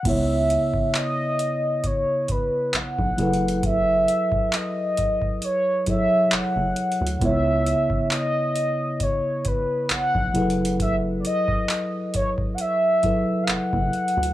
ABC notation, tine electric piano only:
X:1
M:4/4
L:1/8
Q:"Swing 16ths" 1/4=67
K:F#dor
V:1 name="Tine electric piano"
[C,B,Ec]6- [C,B,Ec] [F,EGAB]- | [F,EGAB]4- [F,EGAB] [F,EGAc]3 | [C,B,Ec]6- [C,B,Ec] [F,EGAB]- | [F,EGAB]4- [F,EGAB] [F,EGAB]3 |]